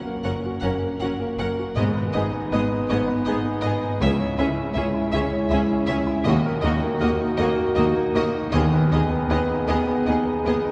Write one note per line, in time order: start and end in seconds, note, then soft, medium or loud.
0.00 1.72 F#2 medium
0.00 1.59 A#3 medium
0.00 1.59 C#4 medium
0.00 0.17 F#4 soft
0.00 0.25 A#4 soft
0.05 0.36 A#3 soft
0.24 0.33 F#1 medium
0.24 0.33 F#2 medium
0.24 0.33 C#4 medium
0.24 0.32 A#4 medium
0.24 0.56 A#4 soft
0.24 0.32 F#5 soft
0.45 0.75 F#4 soft
0.61 0.70 F#1 medium
0.61 0.71 F#2 medium
0.61 0.94 A#3 medium
0.61 0.71 C#4 medium
0.61 0.71 A#4 medium
0.61 0.69 F#5 medium
0.83 1.13 A#4 soft
1.00 1.08 F#1 medium
1.00 1.10 F#2 medium
1.00 1.10 C#4 medium
1.00 1.31 F#4 medium
1.00 1.10 A#4 medium
1.00 1.08 F#5 medium
1.20 1.50 A#3 soft
1.38 1.46 F#1 medium
1.38 1.48 F#2 medium
1.38 1.47 C#4 medium
1.38 1.48 A#4 medium
1.38 1.70 A#4 medium
1.38 1.47 F#5 medium
1.59 1.77 F#4 soft
1.75 1.83 G#1 medium
1.75 2.85 G#2 medium
1.75 3.97 G#2 medium
1.75 1.86 G#2 medium
1.75 3.97 B3 medium
1.75 1.86 B3 medium
1.75 3.97 D#4 medium
1.75 1.85 G#4 medium
1.75 1.84 D#5 medium
1.95 2.25 B4 soft
2.13 2.23 G#1 medium
2.13 2.24 G#2 medium
2.13 2.23 B3 medium
2.13 2.44 D#4 medium
2.13 2.23 G#4 medium
2.13 2.21 D#5 medium
2.33 2.63 B3 soft
2.52 2.60 G#1 medium
2.52 2.60 G#2 medium
2.52 2.61 B3 medium
2.52 2.62 G#4 medium
2.52 2.82 B4 medium
2.52 2.60 D#5 medium
2.72 3.01 D#4 soft
2.89 2.98 G#1 medium
2.89 2.98 G#2 medium
2.89 3.19 B3 medium
2.89 2.98 B3 medium
2.89 2.99 G#4 medium
2.89 2.97 D#5 medium
3.08 3.37 B4 soft
3.25 3.33 G#1 medium
3.25 3.35 G#2 medium
3.25 3.35 B3 medium
3.25 3.56 D#4 medium
3.25 3.35 G#4 medium
3.25 3.33 D#5 medium
3.44 3.74 B3 soft
3.62 3.71 G#1 medium
3.62 3.73 G#2 medium
3.62 3.72 B3 medium
3.62 3.73 G#4 medium
3.62 3.92 B4 medium
3.62 3.71 D#5 medium
3.82 4.01 D#4 medium
3.99 4.08 C#2 medium
3.99 6.22 C#2 medium
3.99 4.10 C#2 medium
3.99 6.21 G#3 medium
3.99 4.09 C#4 medium
3.99 6.21 E4 medium
3.99 4.09 G#4 medium
3.99 4.09 E5 medium
4.20 4.49 C#5 medium
4.37 4.45 C#2 medium
4.37 4.47 C#2 medium
4.37 4.47 C#4 medium
4.37 4.68 E4 medium
4.37 4.47 G#4 medium
4.37 4.46 E5 medium
4.57 4.87 C#4 soft
4.74 4.82 C#2 medium
4.74 4.84 C#2 medium
4.74 4.84 C#4 medium
4.74 4.85 G#4 medium
4.74 5.05 C#5 medium
4.74 4.82 E5 medium
4.94 5.24 E4 medium
5.11 5.19 C#2 medium
5.11 5.21 C#2 medium
5.11 5.44 C#4 medium
5.11 5.23 C#4 medium
5.11 5.22 G#4 medium
5.11 5.20 E5 medium
5.32 5.62 C#5 soft
5.50 5.58 C#2 medium
5.50 5.59 C#2 medium
5.50 5.61 C#4 medium
5.50 5.81 E4 medium
5.50 5.60 G#4 medium
5.50 5.58 E5 medium
5.70 5.99 C#4 medium
5.87 5.96 C#2 medium
5.87 5.97 C#2 medium
5.87 5.98 C#4 medium
5.87 5.98 G#4 medium
5.87 6.18 C#5 medium
5.87 5.95 E5 medium
6.07 6.25 E4 medium
6.24 6.33 D#2 loud
6.24 8.49 D#2 medium
6.24 6.34 D#2 medium
6.24 8.34 A#3 medium
6.24 6.34 A#3 medium
6.24 8.34 F#4 loud
6.24 6.36 F#4 medium
6.24 6.32 D#5 medium
6.46 6.75 A#4 medium
6.62 6.71 D#2 medium
6.62 6.72 A#3 medium
6.62 6.93 D#4 medium
6.62 6.73 F#4 medium
6.62 6.70 D#5 medium
6.82 7.12 A#3 medium
7.00 7.08 D#2 medium
7.00 7.09 D#2 medium
7.00 7.10 A#3 medium
7.00 7.10 F#4 medium
7.00 7.31 A#4 medium
7.00 7.08 D#5 medium
7.20 7.50 D#4 medium
7.37 7.46 D#2 medium
7.37 7.47 D#2 medium
7.37 7.47 A#3 medium
7.37 7.69 A#3 medium
7.37 7.48 F#4 medium
7.37 7.45 D#5 medium
7.57 7.88 A#4 medium
7.75 7.84 D#2 medium
7.75 7.85 D#2 medium
7.75 7.86 A#3 medium
7.75 8.07 D#4 medium
7.75 7.85 F#4 medium
7.75 7.83 D#5 medium
7.95 8.26 A#3 medium
8.15 8.23 D#2 medium
8.15 8.24 A#3 medium
8.15 8.23 F#4 medium
8.15 8.45 A#4 medium
8.15 8.23 D#5 medium
8.34 8.53 D#4 medium
8.51 8.61 D#2 medium
8.51 10.72 D#2 medium
8.51 9.64 D#3 medium
8.51 10.72 B3 medium
8.51 8.62 B3 medium
8.51 10.72 G#4 loud
8.51 8.62 G#4 medium
8.51 8.60 D#5 medium
8.74 9.04 B4 medium
8.91 8.99 D#2 medium
8.91 9.00 D#2 medium
8.91 9.00 B3 medium
8.91 9.23 D#4 medium
8.91 9.02 G#4 medium
8.91 8.99 D#5 medium
9.12 9.42 B3 medium
9.30 9.38 D#2 medium
9.30 9.38 B3 medium
9.30 9.39 G#4 medium
9.30 9.61 B4 medium
9.30 9.39 D#5 medium
9.50 9.80 D#4 medium
9.68 9.76 D#2 medium
9.68 9.76 B3 medium
9.68 9.99 B3 medium
9.68 9.76 G#4 medium
9.68 9.76 D#5 medium
9.88 10.19 B4 medium
10.06 10.15 D#2 medium
10.06 10.15 B3 medium
10.06 10.38 D#4 medium
10.06 10.15 G#4 medium
10.06 10.14 D#5 medium
10.26 10.57 B3 soft
10.45 10.53 D#2 medium
10.45 10.54 D#2 medium
10.45 10.54 B3 medium
10.45 10.55 G#4 medium
10.45 10.72 B4 medium
10.45 10.54 D#5 medium
10.65 10.72 D#4 medium